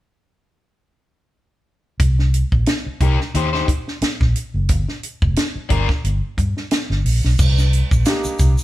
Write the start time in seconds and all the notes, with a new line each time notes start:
2.00 C2, kick, closed hi-hat
2.19 snare
2.34 closed hi-hat
2.52 A#1, kick
2.66 snare, closed hi-hat
2.86 muted fingered electric bass stroke
3.00 C2 D#4 G4 A#4, kick, closed hi-hat
3.20 snare
3.34 D#2 D#4 G4 C5, closed hi-hat
3.53 D#4 G4 C5, snare
3.68 kick, closed hi-hat
3.88 snare
4.01 muted fingered electric bass stroke, snare, closed hi-hat
4.21 A#1, kick, snare
4.36 closed hi-hat
4.54 F#1
4.69 G1, kick, closed hi-hat
4.88 snare
5.03 closed hi-hat
5.22 F1, kick
5.36 snare, closed hi-hat
5.55 muted fingered electric bass stroke
5.69 G1 D4 F4 A#4, kick, closed hi-hat
5.89 kick, snare
6.04 G1, closed hi-hat
6.37 G2, kick, closed hi-hat
6.57 snare
6.71 snare, closed hi-hat
6.90 G1, snare
7.05 A#1, open hi-hat
7.24 B1, snare
7.39 C2, kick, crash, shaker
7.58 snare, shaker
7.73 closed hi-hat
7.91 A#1, kick, shaker
8.06 A#3 D4 D#4 G4, snare, closed hi-hat, shaker
8.24 muted fingered electric bass stroke, shaker
8.39 C2, kick, closed hi-hat, shaker
8.58 shaker